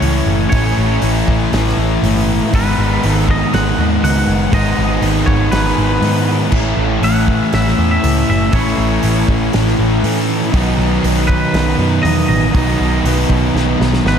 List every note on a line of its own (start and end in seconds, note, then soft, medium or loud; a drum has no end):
0.00 0.21 C#2 medium
0.00 0.50 A2 medium
0.00 0.51 E3 loud
0.00 0.51 E3 medium
0.00 0.51 A3 medium
0.00 0.52 A3 loud
0.00 0.52 C#4 medium
0.00 0.52 E4 loud
0.00 0.48 C#5 loud
0.00 open hi-hat medium
0.26 0.46 F#1 medium
0.49 0.72 A1 medium
0.49 1.00 A2 medium
0.49 1.01 E3 medium
0.49 1.02 A3 loud
0.49 0.97 C#5 medium
0.49 kick loud
0.49 open hi-hat medium
0.54 2.52 C#4 loud
0.54 2.52 E4 loud
0.78 0.97 A1 medium
1.01 1.21 A1 medium
1.01 1.50 A2 medium
1.01 1.52 E3 medium
1.01 1.52 A3 medium
1.01 open hi-hat medium
1.28 1.47 A1 medium
1.28 kick medium
1.51 1.72 A1 medium
1.51 2.02 A2 medium
1.51 1.79 E3 loud
1.51 1.77 A3 loud
1.51 snare loud
1.51 open hi-hat medium
1.67 snare soft
1.77 1.96 A1 loud
1.77 2.04 E3 medium
1.77 2.05 A3 medium
2.03 2.40 G1 medium
2.03 2.51 A2 medium
2.03 2.52 E3 medium
2.03 2.53 A3 medium
2.03 open hi-hat medium
2.53 2.72 G#1 loud
2.53 3.03 G#2 loud
2.53 3.04 D#3 loud
2.53 3.05 G#3 loud
2.53 4.52 B3 loud
2.53 4.53 D#4 loud
2.53 3.11 B4 loud
2.53 kick loud
2.53 open hi-hat medium
2.78 2.97 G#1 medium
3.03 3.41 G#1 medium
3.03 3.52 G#2 medium
3.03 3.54 D#3 medium
3.03 3.54 G#3 medium
3.03 open hi-hat medium
3.11 3.30 A4 loud
3.29 3.54 D#5 loud
3.29 kick medium
3.53 3.72 G#1 loud
3.53 4.02 G#2 loud
3.53 3.81 D#3 loud
3.53 3.78 G#3 loud
3.53 4.03 F#5 loud
3.53 snare loud
3.53 open hi-hat medium
3.79 3.97 D#2 medium
3.79 4.04 D#3 medium
3.79 4.05 G#3 medium
4.03 4.22 C#2 loud
4.03 4.52 G#2 medium
4.03 4.53 D#3 medium
4.03 4.54 G#3 medium
4.03 4.54 F#5 loud
4.03 open hi-hat medium
4.27 4.46 F#1 medium
4.52 4.71 G#1 medium
4.52 5.01 G#2 medium
4.52 5.03 D#3 loud
4.52 5.04 G#3 loud
4.52 6.52 B3 medium
4.52 6.52 D#4 loud
4.52 5.00 D#5 medium
4.52 kick loud
4.52 open hi-hat medium
4.79 4.97 G#1 loud
5.02 5.21 G#1 medium
5.02 5.50 G#2 medium
5.02 5.52 D#3 medium
5.02 5.53 G#3 medium
5.02 open hi-hat medium
5.26 5.46 G#1 loud
5.26 5.51 C#5 loud
5.26 kick medium
5.51 5.71 G#1 medium
5.51 6.00 G#2 loud
5.51 5.77 D#3 loud
5.51 5.75 G#3 loud
5.51 6.23 B4 loud
5.51 snare loud
5.51 open hi-hat medium
5.66 snare soft
5.77 5.97 G#1 medium
5.77 6.01 D#3 medium
5.77 6.03 G#3 medium
6.01 6.50 G#2 medium
6.01 6.40 G#2 medium
6.01 6.51 D#3 medium
6.01 6.52 G#3 medium
6.01 open hi-hat medium
6.52 6.72 A1 medium
6.52 7.02 A2 medium
6.52 7.03 E3 loud
6.52 7.04 A3 loud
6.52 8.52 C#4 medium
6.52 8.52 E4 medium
6.52 kick loud
6.52 crash loud
6.77 6.96 A1 medium
7.01 7.40 A1 medium
7.01 7.51 A2 medium
7.01 7.52 E3 medium
7.01 7.53 A3 medium
7.01 7.54 F#5 loud
7.01 open hi-hat medium
7.28 kick medium
7.52 7.72 A1 loud
7.52 8.00 A2 loud
7.52 7.78 E3 loud
7.52 7.75 A3 loud
7.52 7.90 E5 loud
7.52 snare loud
7.52 open hi-hat medium
7.67 snare soft
7.77 7.97 E2 medium
7.77 8.01 E3 medium
7.77 8.03 A3 medium
7.91 8.29 E5 loud
8.02 8.23 C#2 medium
8.02 8.51 A2 medium
8.02 8.53 E3 medium
8.02 8.54 A3 medium
8.02 open hi-hat medium
8.29 8.48 F#1 medium
8.29 8.55 E5 medium
8.53 8.72 A1 medium
8.53 9.01 A2 medium
8.53 9.03 E3 loud
8.53 9.04 A3 loud
8.53 10.53 C#4 loud
8.53 10.53 E4 loud
8.53 10.00 C#5 medium
8.53 kick loud
8.53 open hi-hat medium
8.78 8.97 A1 medium
9.02 9.23 A1 medium
9.02 9.52 A2 medium
9.02 9.53 E3 medium
9.02 9.55 A3 loud
9.02 open hi-hat medium
9.29 9.48 A1 loud
9.29 kick medium
9.53 9.73 A1 medium
9.53 10.01 A2 medium
9.53 9.79 E3 loud
9.53 9.77 A3 loud
9.53 snare loud
9.53 open hi-hat medium
9.67 snare soft
9.78 9.98 A1 medium
9.78 10.03 E3 medium
9.78 10.04 A3 medium
10.03 10.51 A2 medium
10.03 10.42 A2 medium
10.03 10.52 E3 medium
10.03 10.53 A3 medium
10.03 open hi-hat medium
10.51 10.73 B1 medium
10.51 11.04 B2 medium
10.51 12.53 D#3 loud
10.51 11.04 F#3 medium
10.51 11.06 B3 loud
10.51 12.54 D#4 loud
10.51 kick loud
10.51 open hi-hat medium
10.78 10.97 B1 medium
11.04 11.42 B1 medium
11.04 11.52 B2 medium
11.04 11.53 F#3 medium
11.04 11.54 B3 medium
11.04 open hi-hat medium
11.28 11.75 B4 loud
11.28 kick medium
11.53 11.73 B1 loud
11.53 12.02 B2 loud
11.53 11.79 F#3 loud
11.53 11.77 B3 loud
11.53 snare loud
11.53 open hi-hat medium
11.78 11.98 F#2 loud
11.78 12.04 F#3 medium
11.78 12.05 B3 medium
12.03 12.24 E2 loud
12.03 12.52 B2 medium
12.03 12.53 F#3 medium
12.03 12.55 B3 medium
12.03 12.27 D#5 loud
12.03 open hi-hat medium
12.29 12.48 A1 medium
12.29 14.01 D#5 loud
12.53 12.74 B1 medium
12.53 13.02 B2 loud
12.53 14.19 D#3 loud
12.53 13.04 F#3 loud
12.53 13.05 B3 loud
12.53 14.19 D#4 loud
12.53 kick loud
12.53 open hi-hat medium
12.80 12.99 B1 medium
13.04 13.24 B1 medium
13.04 13.51 B2 medium
13.04 13.53 F#3 medium
13.04 13.54 B3 loud
13.04 open hi-hat medium
13.29 13.49 B1 loud
13.29 kick medium
13.52 13.74 B1 loud
13.52 14.03 B2 loud
13.52 13.81 F#3 loud
13.52 13.78 B3 loud
13.52 snare medium
13.79 13.99 B1 medium
13.79 14.04 F#3 medium
13.79 14.05 B3 medium
13.79 snare medium
13.94 snare medium
14.05 14.19 G#1 loud
14.05 14.19 B2 medium
14.05 14.19 F#3 medium
14.05 14.19 B3 medium
14.05 14.19 B4 loud
14.05 snare loud